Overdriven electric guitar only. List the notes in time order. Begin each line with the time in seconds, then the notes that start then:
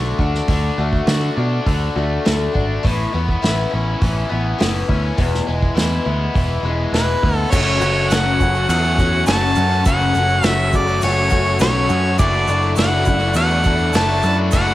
Already playing: D3 A3 D4 F#4
0.20 D4
0.49 D3
0.78 A3
1.07 F#4
1.37 D4
1.67 D3
1.96 A3
2.25 D3
2.54 D4
2.84 A2
3.14 B3
3.41 E4
3.71 C#4
4.01 E3
4.29 B3
4.58 E3
4.88 C#4
5.16 E2
5.47 G#3
5.75 E4
6.05 B3
6.35 E3
6.65 G#3
6.93 E3
7.24 B3
7.51 F#2 C#3 F#3 A3 C#4 F#4
7.67 F#3 A3 C#4 F#4
7.82 F#3 A3 C#4 F#4
8.11 F#2 C#3 F#3 A3 C#4 F#4
8.26 F#3 A3 C#4 F#4
8.41 muted overdriven electric guitar stroke
8.55 F#3 A3 C#4 F#4
9.00 F#3 A3 C#4 F#4
9.27 F#2 C#3 F#3 A3 C#4 F#4
9.41 F#3 A3 C#4 F#4
9.55 F#3 A3 C#4 F#4
9.69 F#3 A3 C#4 F#4
9.82 F#2 C#3 F#3 A3 C#4 F#4
9.96 F#3 A3 C#4 F#4
10.12 F#3 A3 C#4 F#4
10.41 F#2 C#3 F#3 A3 C#4 F#4
10.55 F#3 A3 C#4 F#4
10.72 muted overdriven electric guitar stroke
10.86 F#3 A3 C#4 F#4
11.31 F#3 A3 C#4 F#4
11.60 F#2 C#3 F#3 A3 C#4 F#4
11.74 F#3 A3 C#4 F#4
11.89 F#3 A3 C#4 F#4
12.04 F#3 A3 C#4 F#4
12.19 F#3 A3 D4 F#4
12.34 A3 D4 F#4
12.49 F#3 A3 D4 F#4
12.77 F#3 A3 D4 F#4
12.92 A3 D4 F#4
13.06 muted overdriven electric guitar stroke
13.20 A3 D4 F#4
13.63 F#3 A3 D4 F#4
13.94 F#3 A3 D4 F#4
14.08 A3 D4 F#4
14.22 F#3 A3 D4 F#4
14.38 A3 D4 F#4
14.53 F#3 A3 D4 F#4
14.67 A3 D4 F#4